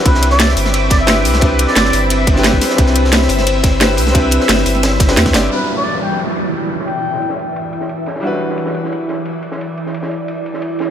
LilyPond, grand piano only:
\new Staff \with { instrumentName = "Grand piano" } { \time 4/4 \key e \minor \tempo 4 = 176 <c' d' e' g' b'>2. <c' d' e' g' b'>4 | <c' d' e' g' b'>2~ <c' d' e' g' b'>8. <c' d' e' g' b'>4~ <c' d' e' g' b'>16 | <c' d' e' g' b'>2. <c' d' e' g' b'>4 | <c' d' e' g' b'>2~ <c' d' e' g' b'>8. <c' d' e' g' b'>8. <c' d' e' g' d''>8 |
<fis g d' e' b'>1~ | <fis g d' e' b'>1 | <g d' e' fis' b'>1~ | <g d' e' fis' b'>1 | }